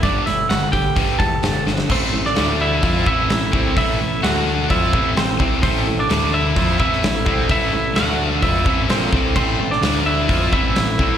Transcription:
<<
  \new Staff \with { instrumentName = "Clean electric guitar" } { \time 4/4 \key a \minor \tempo 4 = 129 <d' d''>8 <e' e''>8 <fis' fis''>8 <g' g''>4 <a' a''>4 r8 | <c' c''>8. <d' d''>8. <e' e''>4 <e' e''>4. | <e' e''>4 <fis' fis''>4 <e' e''>4 <c' c''>8. r16 | <c' c''>8. <d' d''>8. <e' e''>4 <e' e''>4. |
<e' e''>4 <fis' fis''>4 <e' e''>4 <c' c''>8. r16 | <c' c''>8. <d' d''>8. <e' e''>4 <e' e''>4. | }
  \new Staff \with { instrumentName = "Steel-string acoustic guitar" } { \time 4/4 \key a \minor g8 a8 a8 g'8 b'8 g'8 a8 d'8 | a,8 a8 d8 d'8 a,8 c'8 a8 e'8 | a,8 a8 d8 d'8 a,8 c'8 a8 e'8 | a,8 a8 d8 d'8 a,8 c'8 a8 e'8 |
a,8 a8 d8 d'8 a,8 c'8 a8 e'8 | a,8 a8 d8 d'8 a,8 c'8 a8 e'8 | }
  \new Staff \with { instrumentName = "Distorted electric guitar" } { \clef bass \time 4/4 \key a \minor <g, d g>8 <g, d>8 <g, d>8 <g, d>8 <g, d g>8 <g, d>8 <g, d>8 <g, d>8 | <a, e a>8 <a, e>8 <d a d'>4 <f c' f'>8 <a, e a>8 <a, e>8 <c g c'>8 | <a, e a>8 <a, e>8 <d a d'>4 <f c' f'>8 <a, e a>8 <a, e>8 <c g c'>8 | <a, e a>8 <a, e>8 <d a d'>4 <f c' f'>8 <e a>8 <a, e>8 <c g c'>8 |
<a, e a>8 <a, e>8 <d a d'>4 <f c' f'>8 <a, e a>8 <bes, f bes>8 <c g c'>8 | <a, e a>8 <a, e>8 <d a d'>4 <f c' f'>8 <a, e a>8 <a, e>8 <c g c'>8 | }
  \new Staff \with { instrumentName = "Overdriven electric guitar" } { \clef bass \time 4/4 \key a \minor <g, d g>8 <g, d>8 <g, d>8 <g, d>8 <g, d g>8 <g, d>8 <g, d>8 <g, d>8 | <a, e a>8 <a, e>8 <d a d'>4 <f c' f'>8 <a, e a>8 <a, e>8 <c g c'>8 | <a, e a>8 <a, e>8 <d a d'>4 <f c' f'>8 <a, e a>8 <a, e>8 <c g c'>8 | <a, e a>8 <a, e>8 <d a d'>4 <f c' f'>8 <a, e a>8 <a, e>8 <c g c'>8 |
<a, e a>8 <a, e>8 <d a d'>4 <f c' f'>8 <a, e a>8 <bes, f bes>8 <c g c'>8 | <a, e a>8 <a, e>8 <d a d'>4 <f c' f'>8 <a, e a>8 <a, e>8 <c g c'>8 | }
  \new Staff \with { instrumentName = "Picked electric bass" } { \clef bass \time 4/4 \key a \minor g,,8 g,,8 g,,8 g,,8 g,,8 e,8 g,,8 g,,8 | a,,8 a,,8 d,4 f,8 a,,8 a,,8 c,8 | a,,8 a,,8 d,4 f,8 a,,8 a,,8 c,8 | a,,8 a,,8 d,4 f,8 a,,8 a,,8 c,8 |
a,,8 a,,8 d,4 f,8 a,,8 bes,,8 c,8 | a,,8 a,,8 d,4 f,8 a,,8 a,,8 c,8 | }
  \new DrumStaff \with { instrumentName = "Drums" } \drummode { \time 4/4 <hho bd>8 hho8 <hho sn>8 <hho bd>8 <hho bd>8 <hho bd>8 <hho sn>8 sn16 sn16 | <cymc bd>8. sn16 <hho sn>4 <hho bd>8 bd8 <hho sn>8 bd8 | <hho bd>4 <hho sn>4 <hho bd>8 bd8 <hho sn>8 bd8 | <hho bd>4 <hho sn>4 <hho bd>8 bd16 sn16 <hho sn>8 bd8 |
<hho bd>4 <hho sn>4 <hho bd>8 bd8 <hho sn>8 bd8 | <cymc bd>8. sn16 <hho sn>4 <hho bd>8 bd8 <hho sn>8 bd8 | }
>>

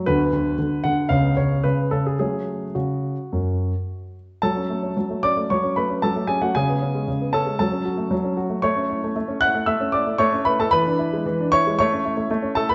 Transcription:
<<
  \new Staff \with { instrumentName = "Grand piano" } { \time 4/4 \key fis \minor \tempo 4 = 114 << { b'4. fis''8 eis''8 cis''8 b'8 a'16 gis'16 | gis'4 fis'2~ fis'8 r8 | <a' a''>4. <d'' d'''>8 <cis'' cis'''>8 <b' b''>8 <a' a''>8 <gis' gis''>16 <fis' fis''>16 | <gis' gis''>4. <a' a''>8 <a' a''>4. r8 |
<cis'' cis'''>4. <fis'' fis'''>8 <e'' e'''>8 <d'' d'''>8 <cis'' cis'''>8 <b' b''>16 <a' a''>16 | <b' b''>4. <cis'' cis'''>8 <cis'' cis'''>4. <a' a''>16 <b' b''>16 | } \\ { <b fis'>2 <b cis'>2 | r1 | r1 | r1 |
r1 | r1 | } >> }
  \new Staff \with { instrumentName = "Grand piano" } { \time 4/4 \key fis \minor <d, d>8 d8 d8 d8 <cis, cis>8 cis8 cis8 cis8 | <fis a cis'>4 cis4 fis,4 r4 | fis16 cis'16 a16 cis'16 fis16 a16 cis'16 a16 fis16 cis'16 a16 cis'16 fis16 a16 cis'16 a16 | cis16 b16 cis'16 gis16 cis16 b16 cis'16 gis16 fis16 cis'16 fis'16 a16 fis16 cis'16 fis'16 a16 |
a16 cis'16 e'16 a16 a16 cis'16 e'16 a16 a16 cis'16 e'16 a16 a16 cis'16 e'16 a16 | e16 d'16 e'16 gis16 e16 d'16 e'16 gis16 a16 cis'16 e'16 a16 a16 cis'16 e'16 a16 | }
>>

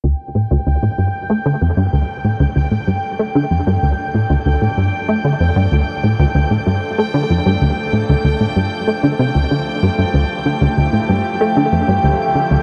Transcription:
<<
  \new Staff \with { instrumentName = "Synth texture" } { \time 4/4 \key d \minor \tempo 4 = 95 g''1~ | g''1~ | g''1~ | g''1~ |
g''1 | }
  \new Staff \with { instrumentName = "Ambient pad" } { \time 4/4 \key d \minor << { <d' a'>1~ | <d' a'>1~ | <d' a'>1~ | <d' a'>1 |
<e' g'>1 | } \\ { <f a>1~ | <f a>1~ | <f a>1~ | <f a>1~ |
<f a>1 | } >> }
  \new Staff \with { instrumentName = "Analog synth bass" } { \clef bass \time 4/4 \key d \minor d,16 r16 a,16 d,16 d,16 a,16 g,16 r16 a16 d16 f,16 g,16 d,16 r16 a,16 d,16 | d,16 a,16 g,16 r16 a16 d16 f,16 g,16 d,16 r16 a,16 d,16 d,16 a,16 g,16 r16 | a16 d16 f,16 g,16 d,16 r16 a,16 d,16 d,16 a,16 g,16 r16 a16 d16 f,16 g,16 | d,16 r16 a,16 d,16 d,16 a,16 g,16 r16 a16 d16 c16 d,16 d16 r16 g,16 g,16 |
d,16 r16 d16 d,16 d,16 a,16 g,16 r16 a16 d16 f,16 g,16 d,16 r16 d16 d,16 | }
>>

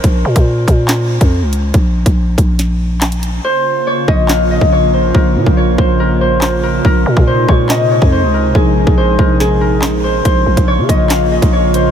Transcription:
<<
  \new Staff \with { instrumentName = "Harp" } { \time 4/4 \key bes \minor \tempo 4 = 141 r1 | r1 | c''4 des''8 ees''8 f''8 ees''8 des''8 c''8 | bes'4 des''8 c''8 bes'8 c''4 bes'8 |
bes'4 c''8 des''8 ees''8 des''8 c''8 bes'8 | aes'4 c''8 bes'8 aes'8 bes'4 c''8 | c''4 des''8 ees''8 f''8 ees''8 des''8 c''8 | }
  \new Staff \with { instrumentName = "Analog synth pad" } { \time 4/4 \key bes \minor r1 | r1 | <des bes f'>1~ | <des bes f'>1 |
<c aes ees'>1~ | <c aes ees'>1 | <des bes f'>1 | }
  \new Staff \with { instrumentName = "808-style bass" } { \clef bass \time 4/4 \key bes \minor bes,,8 bes,16 bes,8. bes,4~ bes,16 f,8 des,8. | bes,,8. bes,,8. bes,,2~ bes,,8 | r4. bes,,4~ bes,,16 bes,,4~ bes,,16 | bes,,8 bes,16 bes,,8. bes,,2~ bes,,8 |
bes,,8 bes,16 bes,8. bes,4~ bes,16 f,8 des,8. | bes,,8. bes,,8. bes,,2~ bes,,8 | bes,,8 bes,,16 bes,,8 des16 bes,,4~ bes,,16 bes,,4~ bes,,16 | }
  \new DrumStaff \with { instrumentName = "Drums" } \drummode { \time 4/4 <hh bd>8. <hh bd>16 r8 <hh bd>8 <hc hh sn>8. <hh bd>16 r8 hh8 | <hh bd>8. <hh bd>16 r8 <hh bd>8 <hh sn>4 <hc hh sn>16 hh16 hh8 | r4 r8 bd8 <hc sn>8. bd16 r4 | bd8. bd16 r8 bd8 r4 <hc sn>4 |
bd8. bd16 r8 bd8 <hc sn>8. bd16 r4 | bd8. bd16 r8 bd8 sn4 <hc sn>4 | <hh bd>8. <hh bd>16 r8 <hh bd>8 <hc hh sn>8. <hh bd>16 r8 hh8 | }
>>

